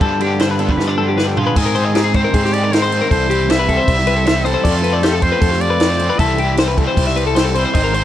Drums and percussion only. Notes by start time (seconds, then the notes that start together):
0.01 kick, ride
0.20 ride
0.39 snare, ride
0.59 ride
0.69 kick
0.79 snare
1.18 snare
1.37 floor tom
1.56 kick, crash
1.76 crash
1.95 snare, crash
2.14 kick, crash
2.34 kick, crash
2.45 snare
2.53 crash
2.73 snare, crash
2.84 snare
2.92 crash
3.11 kick, crash
3.31 crash
3.50 snare, crash
3.69 kick, crash
3.88 kick, crash
3.99 snare
4.07 crash
4.26 snare, crash
4.37 snare
4.46 crash
4.65 kick, crash
4.84 crash
5.03 snare, crash
5.22 kick, crash
5.42 kick, crash
5.53 snare
5.61 crash
5.80 snare, crash
5.91 snare
5.99 crash
6.19 kick, crash
6.38 crash
6.57 snare, crash
6.78 kick, crash
6.97 kick, crash
7.08 snare
7.17 crash
7.36 snare, crash
7.55 crash
7.75 kick, crash
7.94 crash